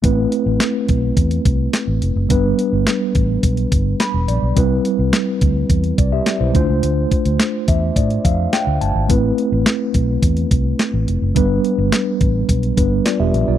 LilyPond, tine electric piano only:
\new Staff \with { instrumentName = "Tine electric piano" } { \time 4/4 \key a \minor \tempo 4 = 106 << { r1 | r2. b''8 d''8 | r2 r8 d''16 <g' e''>8 <e' c''>8 r16 | r4. e''8 d''8 f''8 g''8 a''8 |
r1 | r2. <f' d''>16 <g' e''>8 <f' d''>16 | } \\ { <a c' e' b'>1 | <g b d' b'>1 | <g c' e' b'>2.~ <g c' e' b'>8 <a d' f' c''>8~ | <a d' f' c''>2.~ <a d' f' c''>8 r8 |
<a c' e' b'>1 | <g b d' b'>2~ <g b d' b'>8 <g b d' b'>4. | } >> }